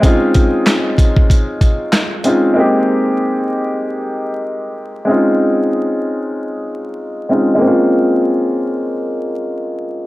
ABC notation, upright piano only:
X:1
M:4/4
L:1/8
Q:"Swing 16ths" 1/4=95
K:Bbdor
V:1 name="Upright piano"
[A,CDEF]6- [A,CDEF] [A,CDEF] | [A,B,CEG]8 | [A,CDEF]6- [A,CDEF] [A,CDEF] | [A,B,CDF]8 |]